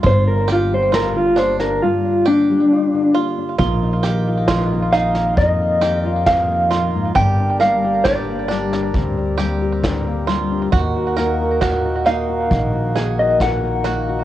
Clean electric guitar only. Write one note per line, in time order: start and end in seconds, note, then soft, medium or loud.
0.07 0.27 C5 loud
0.28 0.48 A#4 medium
0.52 0.72 F4 medium
0.74 0.94 C5 medium
0.95 1.15 A#4 medium
1.17 1.37 F4 medium
1.39 1.59 C5 medium
1.60 1.81 A#4 medium
1.82 2.25 F4 medium
2.28 3.13 D4 medium
4.93 5.38 F5 medium
5.38 6.00 D#5 medium
6.00 6.26 D5 medium
6.26 7.12 F5 medium
7.16 7.60 G5 medium
7.61 8.02 F5 medium
8.04 9.34 D5 medium
12.07 13.19 F5 medium
13.19 13.42 D#5 medium
13.42 14.24 F#5 medium